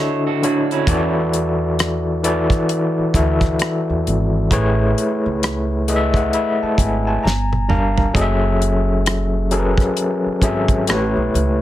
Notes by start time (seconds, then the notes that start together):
Already playing: D3 D4 E4 F#4 A4 C#5 D#5 E5
0.27 F#4 A4
0.43 D3 D4 E4 F#4 C#5, closed hi-hat
0.71 C#4 E4, closed hi-hat
0.87 E2 E3 E4 F#4 A4 D5, kick, closed hi-hat
1.33 closed hi-hat
1.79 cross-stick, closed hi-hat
2.24 E3 E4 F#4 A4 D5, closed hi-hat
2.50 kick, closed hi-hat
2.69 closed hi-hat
2.99 muted upright bass stroke
3.14 D2 E3 E4 F#4 A4 E5, kick, closed hi-hat
3.41 kick, closed hi-hat
3.45 cross-stick
3.59 cross-stick, closed hi-hat
3.90 E2
4.07 G#1, closed hi-hat
4.51 A1 A3 E4 G#4 B4 C#5, kick, closed hi-hat
4.98 closed hi-hat
5.26 C#2
5.43 cross-stick, closed hi-hat
5.88 A3 E4 G#4 B4 D#5 E5, closed hi-hat
5.96 E5
6.14 F#5, kick, closed hi-hat
6.33 E5 B5, closed hi-hat
6.63 A5, muted upright bass stroke
6.78 G#1 G#5, kick, closed hi-hat
7.07 G#5 A5
7.23 G1 A#5, snare
7.53 high tom
7.68 G3 D4 A#4 F5 A5 A#5, mid tom
7.98 floor tom
8.14 F#1 F#3 C#4 G#4 A4 D#5, kick, closed hi-hat
8.21 E5
8.62 closed hi-hat
9.06 cross-stick, closed hi-hat
9.51 F#3 C#4 G#4 A4 A#4, closed hi-hat
9.59 B4
9.78 kick, cross-stick, closed hi-hat
9.97 closed hi-hat
10.26 muted upright bass stroke
10.42 G#1 F#3 C#4 G#4 A4 E5, kick, closed hi-hat
10.68 kick, closed hi-hat
10.87 A1 A3 E4 G4 B4 C#5, cross-stick, closed hi-hat
11.16 B1
11.34 C#2, closed hi-hat